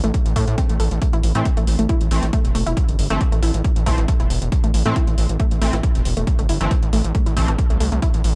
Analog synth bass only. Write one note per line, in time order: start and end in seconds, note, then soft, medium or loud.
0.04 0.12 A1 medium
0.26 0.34 A1 medium
0.36 0.45 A2 loud
0.48 0.56 A2 medium
0.69 0.78 A1 medium
0.80 0.89 A1 loud
0.91 0.99 A1 medium
1.13 1.21 A1 medium
1.24 1.33 A1 loud
1.35 1.43 A2 medium
1.57 1.65 A1 medium
1.67 1.76 A1 loud
1.79 1.87 A1 medium
2.01 2.09 A1 medium
2.11 2.20 A1 loud
2.23 2.31 A1 medium
2.45 2.53 E1 medium
2.55 2.64 E1 loud
2.66 2.75 E1 medium
2.88 2.97 G1 medium
2.99 3.08 G1 loud
3.10 3.18 G1 medium
3.32 3.40 A1 medium
3.43 3.52 A1 loud
3.54 3.62 A1 medium
3.76 3.84 A1 medium
3.86 3.95 A1 medium
3.98 4.06 A1 medium
4.20 4.28 E1 medium
4.30 4.39 E1 loud
4.42 4.50 E1 medium
4.64 4.72 A1 medium
4.74 4.83 A1 loud
4.86 4.94 A2 medium
5.07 5.16 A1 medium
5.18 5.27 A1 loud
5.29 5.37 A1 medium
5.51 5.59 A1 medium
5.62 5.71 A1 loud
5.73 5.81 A1 medium
5.95 6.03 E1 medium
6.05 6.14 E1 loud
6.17 6.25 E1 medium
6.39 6.47 G1 medium
6.49 6.58 G1 loud
6.61 6.69 G1 medium
6.83 6.91 A1 medium
6.93 7.02 A1 loud
7.05 7.13 A1 medium
7.26 7.35 A1 medium
7.37 7.46 A1 loud
7.48 7.56 A1 medium
7.70 7.78 C2 medium
7.81 7.90 C2 loud
7.92 8.00 C2 medium
8.14 8.22 A1 medium
8.24 8.33 A1 loud